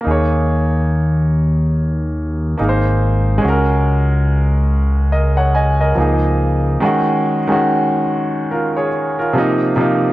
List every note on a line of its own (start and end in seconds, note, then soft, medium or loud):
0.01 2.52 A#3 medium
0.01 2.54 D#4 medium
0.07 2.55 D#2 medium
0.07 2.56 G#4 medium
0.11 2.58 C#5 medium
2.57 3.40 G#1 medium
2.57 3.43 A#3 medium
2.57 3.43 D#4 medium
2.57 3.44 G#4 soft
2.62 2.68 A#4 soft
2.69 3.48 C5 medium
3.38 5.90 G#3 medium
3.38 5.92 C#4 medium
3.45 5.94 C#2 medium
3.45 5.93 F#4 medium
3.45 5.11 A#4 medium
5.12 5.37 A#4 soft
5.12 5.36 D#5 medium
5.37 5.54 C#5 soft
5.37 5.53 F#5 medium
5.55 5.79 D#5 medium
5.55 5.79 G#5 medium
5.81 6.21 A#4 soft
5.81 6.20 D#5 medium
5.95 6.78 C#2 medium
5.95 6.80 F3 medium
5.95 6.81 A#3 medium
5.95 6.82 D#4 medium
6.00 6.83 G#4 medium
6.80 7.36 D#3 medium
6.80 7.37 G#3 medium
6.80 7.37 C#4 medium
6.85 7.38 F#4 medium
7.47 8.87 D#3 medium
7.47 8.87 G#3 medium
7.47 8.88 C#4 medium
7.52 8.52 F#4 medium
8.51 8.75 F4 soft
8.51 8.75 A#4 medium
8.76 9.16 G#4 soft
8.76 9.16 C#5 medium
9.19 9.59 F4 soft
9.19 9.58 A#4 medium
9.33 9.71 C3 medium
9.33 9.72 F3 medium
9.33 9.72 A#3 medium
9.38 9.73 D#4 medium
9.76 10.13 C3 medium
9.76 10.13 F3 medium
9.76 10.13 A#3 medium
9.81 10.13 D#4 medium